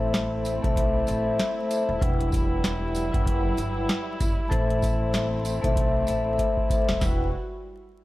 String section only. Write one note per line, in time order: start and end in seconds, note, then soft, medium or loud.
0.00 1.99 A3 medium
0.00 1.99 C4 medium
0.00 6.97 E4 medium
2.01 4.49 F#3 medium
2.01 4.48 G3 medium
4.51 6.99 A3 medium
4.51 6.99 C4 medium
7.01 7.30 G3 medium
7.01 7.30 E4 medium
7.01 7.30 F#4 medium